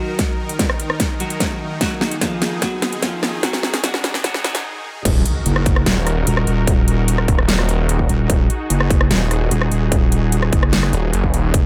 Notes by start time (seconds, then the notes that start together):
Already playing: D#3 F#3 D#4 F#4 A#4, riser
0.19 kick, snare, closed hi-hat
0.49 closed hi-hat
0.59 kick, snare, closed hi-hat
0.70 cross-stick
0.80 closed hi-hat
0.90 cross-stick
1.00 kick, snare, closed hi-hat
1.20 F#3 F#4, closed hi-hat
1.30 closed hi-hat
1.40 kick, snare, closed hi-hat
1.81 F#3 F#4 G#4, kick, snare, closed hi-hat
2.01 snare
2.11 closed hi-hat
2.21 F3 F4, kick, snare, closed hi-hat
2.42 snare, closed hi-hat
2.62 F#3 F#4, kick, snare, closed hi-hat
2.82 snare, closed hi-hat
2.93 closed hi-hat
3.02 F3 F4, kick, snare, closed hi-hat
3.23 snare
3.43 F#3 F#4, kick, snare, closed hi-hat
3.53 snare
3.63 snare
3.74 snare, closed hi-hat
3.83 F#3 F#4, kick, snare, closed hi-hat
3.94 snare
4.04 snare, closed hi-hat
4.14 snare
4.24 F#3 F#4, kick, snare, closed hi-hat
4.34 snare
4.44 F#3 F#4, snare, closed hi-hat
4.55 snare, closed hi-hat
5.05 D#1 D#4 F#4 A#4, kick, closed hi-hat, crash, impact
5.26 closed hi-hat
5.46 F#1, closed hi-hat
5.56 cross-stick
5.66 kick, closed hi-hat
5.76 cross-stick
5.86 D#1, snare, closed hi-hat
6.07 cross-stick, closed hi-hat
6.27 D#1, closed hi-hat
6.37 cross-stick
6.47 D#1, closed hi-hat
6.67 kick, closed hi-hat
6.88 closed hi-hat
7.08 closed hi-hat
7.18 cross-stick
7.28 D#1, kick, closed hi-hat
7.39 cross-stick
7.49 snare, closed hi-hat
7.59 cross-stick
7.69 closed hi-hat
7.89 closed hi-hat
7.99 kick
8.09 D#1, closed hi-hat
8.30 D#1 G#4, kick, closed hi-hat
8.50 closed hi-hat
8.70 F#1, closed hi-hat
8.80 cross-stick
8.90 kick, closed hi-hat
9.01 cross-stick
9.11 D#1, snare, closed hi-hat
9.31 cross-stick, closed hi-hat
9.51 D#1, closed hi-hat
9.62 cross-stick
9.71 D#1, closed hi-hat
9.92 kick, closed hi-hat
10.12 closed hi-hat
10.32 closed hi-hat
10.43 cross-stick
10.53 F#1, kick, closed hi-hat
10.63 cross-stick
10.73 snare, closed hi-hat
10.83 cross-stick
10.93 D#1, closed hi-hat
11.13 F#1, closed hi-hat
11.24 kick
11.34 D#1, closed hi-hat
11.54 F1 B3 F4, kick, closed hi-hat